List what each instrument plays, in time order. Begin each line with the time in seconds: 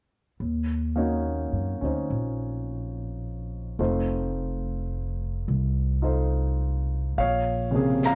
0.40 upright bass D#2
0.96 grand piano A#3 C#4 D#4 F#4 C#5
1.52 upright bass F#2
1.81 upright bass D2, grand piano C#4 D#4 C5
2.10 upright bass A#1
3.79 upright bass F1, grand piano A3 C4 D#4 F4 C5
5.48 upright bass C2
6.02 grand piano D#4 F4 A4 C5
7.17 upright bass A#1, grand piano C#5 F5, brush sweep
7.71 grand piano C3 C#3 A#3
7.76 grand piano G#4
8.03 grand piano F5 A#5, snare, hi-hat pedal